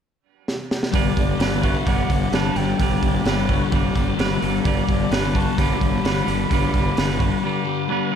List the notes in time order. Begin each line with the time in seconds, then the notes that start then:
0.48 snare
0.71 snare
0.83 snare
0.92 G1 G2 D3 G3 B3 D4 G4 B4 D5, kick, open hi-hat
1.15 G1 D3 G3 D5, kick, open hi-hat
1.38 G1 G2 D3 G3 B3 D4 B4, snare, open hi-hat
1.62 G2 D3 G3 B3 D4 F#4 B4 E5, kick, open hi-hat
1.85 G1 G2 D3 G3 B3 D4 G4 F#5, kick, open hi-hat
1.89 B4
2.09 G1 D3 G3, kick, open hi-hat
2.32 G1 G2 D3 G3 B3 D4 B4 A5, snare, open hi-hat
2.55 G1 D3 G3 B3 A4 B4 G5, open hi-hat
2.59 D4
2.77 G1 G2 D3 G3 D4 G4, kick, open hi-hat
2.81 B3 B4
3.01 G1 D3 G3, kick, open hi-hat
3.25 G1 G2 D3 G3 B3 D4 B4, snare, open hi-hat
3.48 G2 D3 G3 B3 D4 F#4 B4, kick, open hi-hat
3.71 G1 G2 D3 G3 B3 D4 G4, kick, open hi-hat
3.76 B4
3.94 G1 D3 G3, kick, open hi-hat
4.17 G1 G2 D3 G3 B3 D4 B4, snare, open hi-hat
4.40 G1 D3 G3 B3 A4 B4, open hi-hat
4.45 D4
4.63 G1 G2 D3 G3 B3 D4 G4 D5, kick, open hi-hat
4.67 B4
4.87 G1 D3 G3 D5, kick, open hi-hat
5.10 G1 G2 D3 G3 B3 D4 B4 B5, snare, open hi-hat
5.14 B4
5.33 G2 D3 G3 B3 D4 F#4 B4 A5, kick, open hi-hat
5.56 G1 G2 D3 G3 D4 G4 B5, kick, open hi-hat
5.60 B3 B4
5.79 G1 D3 G3, kick, open hi-hat
6.02 G1 G2 D3 G3 D4 B4, snare, open hi-hat
6.06 B3 B4
6.26 G1 D3 G3 B3 A4 B4, open hi-hat
6.31 D4
6.50 G1 G2 D3 G3 B3 D4 G4, kick, open hi-hat
6.54 B4
6.72 G1 D3 G3, kick, open hi-hat
6.95 G1 G2 D3 G3 D4 B4, snare, open hi-hat
7.00 B3 B4
7.10 snare
7.18 G2 D3 G3 F#4 B4, kick, open hi-hat
7.22 B3 D4
7.42 G2 D3 G3 B3 D4 G4
7.47 B4
7.65 D3 G3
7.88 G2 D3 G3 B3 D4 B4
8.11 G3 A4 B4